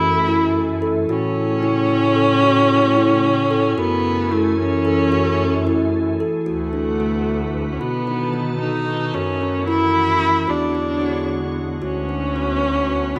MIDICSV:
0, 0, Header, 1, 5, 480
1, 0, Start_track
1, 0, Key_signature, 3, "minor"
1, 0, Tempo, 536193
1, 981, Time_signature, 5, 3, 24, 8
1, 11809, End_track
2, 0, Start_track
2, 0, Title_t, "Kalimba"
2, 0, Program_c, 0, 108
2, 253, Note_on_c, 0, 64, 69
2, 550, Note_off_c, 0, 64, 0
2, 734, Note_on_c, 0, 69, 67
2, 884, Note_off_c, 0, 69, 0
2, 977, Note_on_c, 0, 66, 79
2, 1273, Note_off_c, 0, 66, 0
2, 1458, Note_on_c, 0, 64, 70
2, 1754, Note_off_c, 0, 64, 0
2, 1931, Note_on_c, 0, 69, 64
2, 2082, Note_off_c, 0, 69, 0
2, 2176, Note_on_c, 0, 66, 81
2, 2473, Note_off_c, 0, 66, 0
2, 2654, Note_on_c, 0, 64, 71
2, 2952, Note_off_c, 0, 64, 0
2, 3139, Note_on_c, 0, 69, 66
2, 3288, Note_off_c, 0, 69, 0
2, 3381, Note_on_c, 0, 66, 78
2, 3677, Note_off_c, 0, 66, 0
2, 3864, Note_on_c, 0, 64, 72
2, 4160, Note_off_c, 0, 64, 0
2, 4341, Note_on_c, 0, 69, 68
2, 4490, Note_off_c, 0, 69, 0
2, 4583, Note_on_c, 0, 66, 81
2, 4879, Note_off_c, 0, 66, 0
2, 5073, Note_on_c, 0, 64, 69
2, 5366, Note_off_c, 0, 64, 0
2, 5553, Note_on_c, 0, 69, 62
2, 5699, Note_off_c, 0, 69, 0
2, 5785, Note_on_c, 0, 66, 71
2, 5934, Note_off_c, 0, 66, 0
2, 6024, Note_on_c, 0, 62, 62
2, 6173, Note_off_c, 0, 62, 0
2, 6266, Note_on_c, 0, 66, 65
2, 6562, Note_off_c, 0, 66, 0
2, 6991, Note_on_c, 0, 66, 77
2, 7138, Note_off_c, 0, 66, 0
2, 7227, Note_on_c, 0, 63, 62
2, 7375, Note_off_c, 0, 63, 0
2, 7462, Note_on_c, 0, 66, 66
2, 7759, Note_off_c, 0, 66, 0
2, 8183, Note_on_c, 0, 66, 78
2, 8332, Note_off_c, 0, 66, 0
2, 8424, Note_on_c, 0, 61, 63
2, 8573, Note_off_c, 0, 61, 0
2, 8662, Note_on_c, 0, 64, 69
2, 8959, Note_off_c, 0, 64, 0
2, 9379, Note_on_c, 0, 66, 76
2, 9529, Note_off_c, 0, 66, 0
2, 9622, Note_on_c, 0, 62, 59
2, 9771, Note_off_c, 0, 62, 0
2, 9860, Note_on_c, 0, 66, 62
2, 10157, Note_off_c, 0, 66, 0
2, 10579, Note_on_c, 0, 66, 75
2, 10728, Note_off_c, 0, 66, 0
2, 10823, Note_on_c, 0, 62, 58
2, 10971, Note_off_c, 0, 62, 0
2, 11063, Note_on_c, 0, 66, 64
2, 11358, Note_off_c, 0, 66, 0
2, 11809, End_track
3, 0, Start_track
3, 0, Title_t, "Viola"
3, 0, Program_c, 1, 41
3, 0, Note_on_c, 1, 64, 89
3, 740, Note_off_c, 1, 64, 0
3, 979, Note_on_c, 1, 61, 109
3, 3390, Note_on_c, 1, 59, 94
3, 3403, Note_off_c, 1, 61, 0
3, 3870, Note_on_c, 1, 57, 79
3, 3884, Note_off_c, 1, 59, 0
3, 4102, Note_off_c, 1, 57, 0
3, 4108, Note_on_c, 1, 61, 95
3, 5513, Note_off_c, 1, 61, 0
3, 5791, Note_on_c, 1, 57, 78
3, 6915, Note_on_c, 1, 61, 60
3, 6928, Note_off_c, 1, 57, 0
3, 6981, Note_on_c, 1, 59, 84
3, 6995, Note_off_c, 1, 61, 0
3, 7693, Note_off_c, 1, 59, 0
3, 7698, Note_on_c, 1, 63, 86
3, 8185, Note_on_c, 1, 61, 84
3, 8199, Note_off_c, 1, 63, 0
3, 8657, Note_off_c, 1, 61, 0
3, 8662, Note_on_c, 1, 64, 103
3, 9390, Note_on_c, 1, 62, 86
3, 9403, Note_off_c, 1, 64, 0
3, 10348, Note_off_c, 1, 62, 0
3, 10587, Note_on_c, 1, 61, 91
3, 11778, Note_on_c, 1, 59, 88
3, 11791, Note_off_c, 1, 61, 0
3, 11809, Note_off_c, 1, 59, 0
3, 11809, End_track
4, 0, Start_track
4, 0, Title_t, "Ambient pad"
4, 0, Program_c, 2, 92
4, 0, Note_on_c, 2, 52, 75
4, 0, Note_on_c, 2, 57, 65
4, 0, Note_on_c, 2, 68, 76
4, 944, Note_off_c, 2, 68, 0
4, 956, Note_off_c, 2, 52, 0
4, 977, Note_on_c, 2, 49, 73
4, 979, Note_on_c, 2, 68, 84
4, 3347, Note_off_c, 2, 57, 0
4, 3359, Note_off_c, 2, 49, 0
4, 3379, Note_on_c, 2, 57, 67
4, 3382, Note_on_c, 2, 52, 72
4, 5751, Note_off_c, 2, 68, 0
4, 5761, Note_off_c, 2, 57, 0
4, 5763, Note_off_c, 2, 52, 0
4, 5797, Note_on_c, 2, 66, 75
4, 5799, Note_on_c, 2, 50, 68
4, 5801, Note_on_c, 2, 59, 63
4, 6982, Note_off_c, 2, 66, 0
4, 6983, Note_off_c, 2, 50, 0
4, 6985, Note_on_c, 2, 51, 68
4, 6985, Note_on_c, 2, 69, 79
4, 8172, Note_off_c, 2, 59, 0
4, 8175, Note_off_c, 2, 69, 0
4, 8176, Note_off_c, 2, 51, 0
4, 8185, Note_on_c, 2, 52, 70
4, 8185, Note_on_c, 2, 57, 61
4, 8188, Note_on_c, 2, 66, 77
4, 9374, Note_off_c, 2, 52, 0
4, 9375, Note_off_c, 2, 57, 0
4, 9387, Note_on_c, 2, 73, 66
4, 9389, Note_on_c, 2, 56, 63
4, 9390, Note_on_c, 2, 50, 72
4, 10574, Note_off_c, 2, 73, 0
4, 10575, Note_off_c, 2, 56, 0
4, 10576, Note_off_c, 2, 50, 0
4, 10587, Note_on_c, 2, 59, 64
4, 10590, Note_on_c, 2, 50, 68
4, 11747, Note_off_c, 2, 66, 0
4, 11772, Note_off_c, 2, 59, 0
4, 11773, Note_off_c, 2, 50, 0
4, 11809, End_track
5, 0, Start_track
5, 0, Title_t, "Bass clarinet"
5, 0, Program_c, 3, 71
5, 0, Note_on_c, 3, 42, 73
5, 942, Note_off_c, 3, 42, 0
5, 970, Note_on_c, 3, 45, 69
5, 3343, Note_off_c, 3, 45, 0
5, 3376, Note_on_c, 3, 42, 76
5, 5636, Note_off_c, 3, 42, 0
5, 5788, Note_on_c, 3, 38, 66
5, 6965, Note_off_c, 3, 38, 0
5, 6989, Note_on_c, 3, 47, 64
5, 8166, Note_off_c, 3, 47, 0
5, 8186, Note_on_c, 3, 42, 70
5, 9363, Note_off_c, 3, 42, 0
5, 9387, Note_on_c, 3, 40, 68
5, 10562, Note_off_c, 3, 40, 0
5, 10583, Note_on_c, 3, 38, 65
5, 11758, Note_off_c, 3, 38, 0
5, 11809, End_track
0, 0, End_of_file